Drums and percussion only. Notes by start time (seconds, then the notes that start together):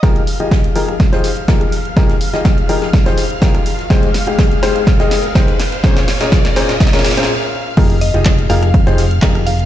0.03 kick, snare, closed hi-hat, ride
0.16 closed hi-hat, ride
0.26 open hi-hat, ride
0.51 kick, snare, closed hi-hat, ride
0.64 closed hi-hat, ride
0.76 open hi-hat, ride
0.88 cross-stick
1.00 kick, snare, closed hi-hat, ride
1.13 snare, closed hi-hat
1.24 snare, open hi-hat, ride
1.37 closed hi-hat
1.48 kick, snare, closed hi-hat, ride
1.61 cross-stick, closed hi-hat
1.72 open hi-hat, ride
1.85 closed hi-hat
1.97 kick, snare, closed hi-hat, ride
2.10 snare, closed hi-hat
2.20 open hi-hat, ride
2.33 snare, closed hi-hat
2.45 kick, snare, closed hi-hat, ride
2.58 closed hi-hat, ride
2.69 open hi-hat, ride
2.82 cross-stick, snare, closed hi-hat
2.93 kick, snare, closed hi-hat, ride
3.06 snare, closed hi-hat
3.17 snare, open hi-hat, ride
3.30 closed hi-hat
3.41 kick, snare, closed hi-hat, ride
3.54 cross-stick, closed hi-hat, ride
3.66 open hi-hat, ride
3.79 snare, closed hi-hat
3.90 kick, snare, closed hi-hat, ride
4.02 closed hi-hat, ride
4.14 snare, open hi-hat, ride
4.27 closed hi-hat
4.39 kick, snare, closed hi-hat, ride
4.51 closed hi-hat, ride
4.62 snare, open hi-hat, ride
4.76 closed hi-hat
4.87 kick, snare, closed hi-hat, ride
4.99 snare, closed hi-hat
5.11 snare, open hi-hat, ride
5.24 closed hi-hat
5.35 kick, snare, closed hi-hat, ride
5.48 closed hi-hat
5.60 snare, open hi-hat, ride
5.72 snare, closed hi-hat
5.84 kick, snare, closed hi-hat, ride
5.97 snare, closed hi-hat
6.08 snare, open hi-hat, ride
6.20 snare, closed hi-hat
6.31 kick, snare, closed hi-hat, ride
6.45 snare, closed hi-hat
6.56 snare, open hi-hat, ride
6.69 snare, closed hi-hat
6.80 kick, snare, closed hi-hat, ride
6.87 snare
6.93 snare, closed hi-hat
6.99 snare
7.04 snare, open hi-hat, ride
7.11 snare
7.17 snare, closed hi-hat
7.23 snare
7.77 kick, closed hi-hat, crash, ride
7.90 closed hi-hat, ride
8.01 open hi-hat, ride
8.14 closed hi-hat
8.25 kick, snare, clap, closed hi-hat, ride
8.38 closed hi-hat, ride
8.50 open hi-hat, ride
8.63 cross-stick, closed hi-hat
8.74 kick, closed hi-hat, ride
8.87 snare, closed hi-hat
8.98 snare, open hi-hat, ride
9.11 closed hi-hat
9.21 kick, snare, clap, closed hi-hat, ride
9.35 cross-stick, closed hi-hat
9.46 open hi-hat, ride
9.59 closed hi-hat